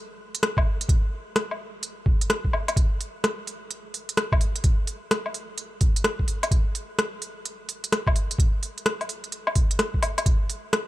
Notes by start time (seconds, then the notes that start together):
0.35 closed hi-hat
0.43 cross-stick, closed hi-hat
0.57 kick, low woodblock
0.81 closed hi-hat
0.89 kick, closed hi-hat
1.36 cross-stick, closed hi-hat
1.51 low woodblock
1.83 closed hi-hat
2.06 kick
2.21 closed hi-hat
2.30 cross-stick, closed hi-hat
2.44 kick
2.53 low woodblock
2.68 closed hi-hat, low woodblock
2.76 kick, closed hi-hat
3.01 open hi-hat
3.24 cross-stick, closed hi-hat
3.47 open hi-hat
3.71 closed hi-hat
3.94 open hi-hat
4.09 closed hi-hat
4.17 cross-stick, closed hi-hat
4.32 kick, low woodblock
4.41 open hi-hat
4.56 closed hi-hat
4.64 kick, closed hi-hat
4.87 open hi-hat
5.11 cross-stick, closed hi-hat
5.26 low woodblock
5.34 open hi-hat
5.58 closed hi-hat
5.81 kick, open hi-hat
5.96 closed hi-hat
6.04 cross-stick, closed hi-hat
6.19 kick
6.28 open hi-hat
6.43 closed hi-hat, low woodblock
6.51 kick, closed hi-hat
6.75 open hi-hat
6.99 cross-stick, closed hi-hat
7.22 open hi-hat
7.45 closed hi-hat
7.69 open hi-hat
7.84 closed hi-hat
7.92 cross-stick, closed hi-hat
8.07 kick, low woodblock
8.16 open hi-hat
8.31 closed hi-hat
8.38 kick, closed hi-hat
8.63 open hi-hat
8.78 closed hi-hat
8.86 cross-stick, closed hi-hat
9.01 open hi-hat, low woodblock
9.09 open hi-hat
9.24 closed hi-hat
9.32 closed hi-hat
9.47 low woodblock
9.55 kick, open hi-hat
9.71 closed hi-hat
9.79 cross-stick, closed hi-hat
9.94 kick
10.03 open hi-hat, low woodblock
10.18 closed hi-hat, low woodblock
10.26 kick, closed hi-hat
10.49 open hi-hat
10.73 cross-stick, closed hi-hat